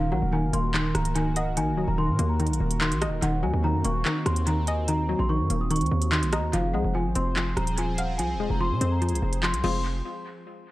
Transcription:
Already playing: 808-style bass D#1, synth pluck D#3, analog synth pad D#3 A#3 F#4 A#4, celesta F5
0.12 808-style bass A#1, synth pluck F#3, celesta F#5
0.22 808-style bass D#1
0.33 synth pluck D#3, celesta G#5
0.43 808-style bass F#1
0.53 808-style bass D#1, synth pluck A#3, celesta C6, closed hi-hat
0.74 synth pluck D#3, clap
0.95 808-style bass C#1, celesta A#5, cross-stick, closed hi-hat
1.05 closed hi-hat
1.15 synth pluck D#3, celesta G#5, closed hi-hat
1.36 synth pluck D#5, celesta F#5, closed hi-hat
1.57 808-style bass A#1, synth pluck D#3, celesta G#5, closed hi-hat
1.72 808-style bass C#1
1.77 synth pluck F#3
1.88 808-style bass D#1, celesta A#5
1.98 synth pluck D#3, celesta C6
2.09 808-style bass A#2
2.19 808-style bass D#2, synth pluck A#3, closed hi-hat
2.29 celesta A#5
2.40 synth pluck D#3, closed hi-hat
2.47 808-style bass A#1, closed hi-hat
2.53 closed hi-hat
2.60 808-style bass D#1
2.71 closed hi-hat
2.81 synth pluck D#3, celesta C6, clap
2.91 808-style bass A#1, closed hi-hat
3.02 synth pluck D#5, cross-stick, closed hi-hat
3.07 808-style bass D#1
3.22 808-style bass D#1, synth pluck D#3, analog synth pad C4, celesta F#5, closed hi-hat
3.43 808-style bass D#2, synth pluck F#3, celesta G#5
3.54 808-style bass D#2
3.64 synth pluck D#3, celesta A#5
3.74 808-style bass F#2
3.84 808-style bass D#1, synth pluck A#3, celesta C#6, closed hi-hat
4.05 synth pluck D#3, clap
4.26 808-style bass D#2, celesta C6, cross-stick, closed hi-hat
4.36 closed hi-hat
4.46 synth pluck D#3, celesta A#5, closed hi-hat
4.67 synth pluck D#5, celesta G#5, closed hi-hat
4.88 synth pluck D#3, celesta A#5, closed hi-hat
5.09 synth pluck F#3
5.19 808-style bass A#1, celesta C6
5.29 synth pluck D#3, celesta C#6
5.40 808-style bass F#2
5.50 808-style bass D#1, synth pluck A#3, closed hi-hat
5.61 celesta D#6
5.71 synth pluck D#3, celesta C#6, closed hi-hat
5.76 closed hi-hat
5.81 808-style bass D#2, closed hi-hat
5.86 closed hi-hat
5.91 808-style bass D#2
6.02 closed hi-hat
6.12 synth pluck D#3, celesta C6, clap
6.22 808-style bass A#1, closed hi-hat
6.33 synth pluck D#5, celesta A#5, cross-stick, closed hi-hat
6.38 808-style bass D#2
6.53 808-style bass F1, synth pluck F3, analog synth pad F3 C4 G#4 C5, celesta F5, closed hi-hat
6.74 808-style bass C2, synth pluck G#3, celesta F#5
6.84 808-style bass F1
6.95 synth pluck F3, celesta G#5
7.05 808-style bass G#1
7.15 808-style bass F1, synth pluck C4, celesta C6, closed hi-hat
7.36 synth pluck F3, clap
7.56 808-style bass D#1, celesta A#5, cross-stick, closed hi-hat
7.67 closed hi-hat
7.78 synth pluck F3, celesta G#5, closed hi-hat
7.98 synth pluck F5, celesta F#5, closed hi-hat
8.18 808-style bass C2, synth pluck F3, celesta G#5, closed hi-hat
8.35 808-style bass D#1
8.40 synth pluck G#3
8.50 808-style bass F1, celesta A#5
8.61 synth pluck F3, celesta C6
8.71 808-style bass C3
8.81 808-style bass F2, synth pluck C4, closed hi-hat
8.92 celesta A#5
9.02 synth pluck F3, closed hi-hat
9.09 808-style bass C2, closed hi-hat
9.15 closed hi-hat
9.22 808-style bass F1
9.33 closed hi-hat
9.43 synth pluck F3, celesta C6, clap
9.53 808-style bass C2, closed hi-hat
9.64 808-style bass F1, analog synth pad F3 C4 G#4 C5, synth pluck F3 G#3 C4 F4, celesta C6, crash

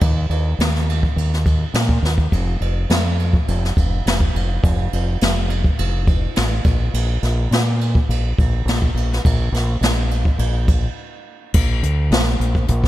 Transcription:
0.01 fingered electric bass D#2, kick, ride
0.30 fingered electric bass D#2, ride
0.59 fingered electric bass D#2, snare, ride
0.75 snare
0.89 ride
1.03 kick
1.16 fingered electric bass D#2, ride
1.33 snare
1.46 kick, ride
1.74 fingered electric bass A#2, snare, ride
1.89 kick
2.02 fingered electric bass D#2, snare
2.18 kick
2.32 fingered electric bass F1, kick, ride
2.60 fingered electric bass F1, ride
2.90 fingered electric bass F2, snare, ride
3.19 ride
3.33 kick
3.48 fingered electric bass F1, ride
3.65 snare
3.77 fingered electric bass F1, kick, ride
4.06 fingered electric bass F1, snare, ride
4.20 kick
4.34 fingered electric bass F1, ride
4.63 fingered electric bass F1, kick, ride
4.93 fingered electric bass F1, ride
5.21 fingered electric bass F1, snare, ride
5.50 ride
5.64 kick
5.79 fingered electric bass F1, ride
6.07 kick, ride
6.36 fingered electric bass A1, snare, ride
6.64 fingered electric bass A#1, kick, ride
6.94 fingered electric bass A#1, ride
7.23 fingered electric bass A#1, snare, ride
7.51 fingered electric bass A#2, snare, ride
7.81 ride
7.95 kick
8.09 fingered electric bass A#1, ride
8.38 fingered electric bass A#1, kick, ride
8.65 fingered electric bass A#1, snare, ride
8.82 kick
8.94 fingered electric bass A#1, ride
9.13 snare
9.25 fingered electric bass A#1, kick, ride
9.52 fingered electric bass A#1, snare, ride
9.81 fingered electric bass A#1, snare, ride
10.11 ride
10.25 kick
10.38 fingered electric bass A#1, ride
10.68 kick, ride
11.54 fingered electric bass A#1, kick, crash
11.83 fingered electric bass D2, closed hi-hat
12.11 fingered electric bass A#1, snare, closed hi-hat
12.40 fingered electric bass A#1, closed hi-hat
12.55 kick
12.68 fingered electric bass A#1, kick, closed hi-hat
12.84 kick, snare

